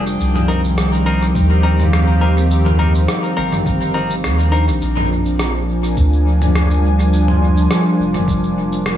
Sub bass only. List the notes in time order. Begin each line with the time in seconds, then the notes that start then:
Already playing: F1
0.20 C2
1.35 D#2
3.38 G1
4.24 D#2
4.68 A#1
4.82 A#1
5.97 D2
7.99 F1